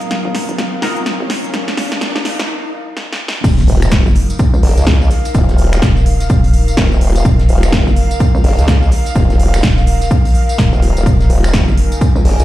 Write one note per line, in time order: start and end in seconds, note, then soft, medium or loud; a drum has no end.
0.00 0.23 D#1 medium
0.00 3.40 F#3 medium
0.00 0.80 D#4 medium
0.00 2.49 D#4 medium
0.00 0.80 F4 medium
0.00 0.80 F#4 medium
0.00 0.80 A#4 loud
0.00 2.49 A#4 medium
0.00 2.49 F5 medium
0.00 3.40 F5 medium
0.00 3.40 A#5 medium
0.00 3.40 D#6 medium
0.00 closed hi-hat soft
0.00 riser medium
0.11 snare medium
0.11 closed hi-hat medium
0.25 0.47 D#1 loud
0.35 snare medium
0.35 open hi-hat loud
0.49 0.57 D#1 loud
0.49 closed hi-hat medium
0.58 0.81 F#1 loud
0.58 snare medium
0.58 closed hi-hat medium
0.82 1.18 D#1 medium
0.82 2.49 D#4 loud
0.82 2.49 F4 medium
0.82 2.49 F#4 medium
0.82 2.49 A#4 loud
0.82 snare medium
0.82 open hi-hat loud
0.97 closed hi-hat soft
1.06 snare medium
1.06 closed hi-hat medium
1.20 1.66 F#1 loud
1.30 snare medium
1.30 open hi-hat loud
1.44 closed hi-hat soft
1.54 snare medium
1.54 closed hi-hat medium
1.68 snare medium
1.68 closed hi-hat soft
1.77 snare medium
1.77 open hi-hat loud
1.92 snare medium
1.92 closed hi-hat medium
2.01 snare loud
2.01 closed hi-hat medium
2.15 2.37 D#1 loud
2.15 snare medium
2.25 snare loud
2.25 open hi-hat loud
2.39 2.47 D#1 loud
2.39 snare loud
2.97 snare medium
3.13 snare medium
3.28 snare loud
3.44 3.66 D#1 medium
3.44 12.45 D#4 medium
3.44 kick loud
3.44 closed hi-hat medium
3.44 crash loud
3.44 tambourine medium
3.44 impact medium
3.44 shaker medium
3.58 snare medium
3.58 closed hi-hat soft
3.58 tambourine soft
3.68 4.04 D#1 medium
3.68 open hi-hat loud
3.68 shaker medium
3.82 finger snap medium
3.82 closed hi-hat medium
3.82 tambourine medium
3.91 12.45 A#4 medium
3.91 kick loud
3.91 snare loud
3.91 closed hi-hat medium
3.91 tambourine medium
3.91 shaker loud
4.06 4.28 F#1 loud
4.06 11.73 F5 medium
4.06 tambourine soft
4.15 open hi-hat loud
4.15 shaker medium
4.30 closed hi-hat medium
4.30 tambourine medium
4.39 kick loud
4.39 closed hi-hat medium
4.39 tambourine medium
4.39 shaker loud
4.54 4.62 C#2 loud
4.54 tambourine soft
4.63 4.75 F#1 loud
4.63 open hi-hat loud
4.63 open hi-hat medium
4.77 5.09 C#2 loud
4.77 closed hi-hat medium
4.77 tambourine medium
4.87 kick loud
4.87 snare loud
4.87 closed hi-hat medium
4.87 tambourine medium
4.87 shaker medium
5.01 tambourine soft
5.10 snare soft
5.10 open hi-hat loud
5.10 shaker medium
5.25 closed hi-hat medium
5.25 closed hi-hat soft
5.25 tambourine medium
5.35 5.81 D#1 loud
5.35 kick loud
5.35 closed hi-hat medium
5.35 tambourine medium
5.35 shaker medium
5.49 snare soft
5.49 closed hi-hat soft
5.49 tambourine soft
5.58 open hi-hat loud
5.58 shaker medium
5.73 finger snap medium
5.73 closed hi-hat medium
5.73 tambourine medium
5.82 6.28 D#1 loud
5.82 kick loud
5.82 snare loud
5.82 closed hi-hat medium
5.82 tambourine medium
5.82 shaker medium
5.96 snare soft
5.96 tambourine soft
6.06 open hi-hat loud
6.06 shaker medium
6.20 snare soft
6.20 closed hi-hat medium
6.20 tambourine medium
6.30 6.76 D#1 loud
6.30 kick loud
6.30 closed hi-hat medium
6.30 tambourine medium
6.30 shaker medium
6.44 open hi-hat medium
6.44 tambourine soft
6.53 open hi-hat loud
6.53 shaker medium
6.68 closed hi-hat soft
6.68 tambourine medium
6.77 7.00 D#1 loud
6.77 kick loud
6.77 snare loud
6.77 closed hi-hat medium
6.77 shaker loud
6.92 tambourine soft
7.01 7.24 D#1 loud
7.01 open hi-hat loud
7.01 shaker medium
7.16 closed hi-hat medium
7.16 tambourine medium
7.25 7.47 D#1 loud
7.25 kick loud
7.25 closed hi-hat medium
7.25 tambourine soft
7.25 shaker medium
7.39 snare medium
7.39 closed hi-hat soft
7.39 tambourine soft
7.49 7.85 D#1 medium
7.49 open hi-hat loud
7.49 shaker medium
7.63 finger snap medium
7.63 closed hi-hat medium
7.63 tambourine medium
7.72 kick loud
7.72 snare loud
7.72 closed hi-hat medium
7.72 shaker medium
7.87 8.09 F#1 loud
7.87 tambourine soft
7.96 open hi-hat loud
7.96 shaker medium
8.11 closed hi-hat medium
8.11 tambourine medium
8.20 kick loud
8.20 closed hi-hat medium
8.20 tambourine medium
8.20 shaker medium
8.35 8.43 C#2 loud
8.35 tambourine soft
8.44 8.56 F#1 loud
8.44 open hi-hat medium
8.44 open hi-hat loud
8.58 8.90 C#2 loud
8.58 closed hi-hat soft
8.58 tambourine medium
8.68 kick loud
8.68 snare loud
8.68 closed hi-hat medium
8.68 tambourine medium
8.68 shaker medium
8.82 tambourine soft
8.91 snare soft
8.91 open hi-hat loud
8.91 shaker medium
9.06 closed hi-hat soft
9.06 closed hi-hat medium
9.06 tambourine medium
9.16 9.62 D#1 loud
9.16 kick loud
9.16 closed hi-hat medium
9.16 shaker medium
9.30 snare soft
9.30 closed hi-hat soft
9.30 tambourine soft
9.40 open hi-hat loud
9.40 shaker medium
9.54 finger snap medium
9.54 closed hi-hat medium
9.54 tambourine medium
9.63 10.09 D#1 loud
9.63 kick loud
9.63 snare loud
9.63 closed hi-hat medium
9.63 shaker loud
9.77 snare medium
9.77 tambourine soft
9.87 open hi-hat loud
9.87 shaker medium
10.02 snare soft
10.02 closed hi-hat medium
10.02 tambourine medium
10.11 kick loud
10.11 closed hi-hat medium
10.11 tambourine medium
10.11 shaker loud
10.25 open hi-hat medium
10.25 tambourine soft
10.35 open hi-hat loud
10.35 shaker medium
10.49 closed hi-hat soft
10.49 tambourine medium
10.58 10.71 D#1 medium
10.58 kick loud
10.58 snare loud
10.58 closed hi-hat medium
10.58 shaker medium
10.73 10.94 D#1 medium
10.73 tambourine soft
10.82 open hi-hat loud
10.82 shaker medium
10.97 11.05 D#1 loud
10.97 closed hi-hat medium
10.97 tambourine medium
11.06 11.28 D#1 loud
11.06 kick loud
11.06 closed hi-hat medium
11.06 tambourine medium
11.06 shaker medium
11.20 snare medium
11.20 closed hi-hat soft
11.20 tambourine soft
11.30 11.66 D#1 loud
11.30 open hi-hat loud
11.30 shaker medium
11.44 finger snap medium
11.44 closed hi-hat medium
11.44 tambourine medium
11.54 kick loud
11.54 snare loud
11.54 closed hi-hat medium
11.54 shaker medium
11.68 11.90 F#1 loud
11.68 12.45 G#5 medium
11.68 tambourine soft
11.77 open hi-hat loud
11.77 shaker medium
11.92 closed hi-hat medium
11.92 tambourine medium
12.01 kick loud
12.01 closed hi-hat medium
12.01 tambourine medium
12.01 shaker loud
12.16 12.24 C#2 loud
12.16 tambourine soft
12.25 12.37 F#1 loud
12.25 open hi-hat medium
12.25 open hi-hat loud
12.39 12.45 C#2 loud
12.39 closed hi-hat soft
12.39 tambourine medium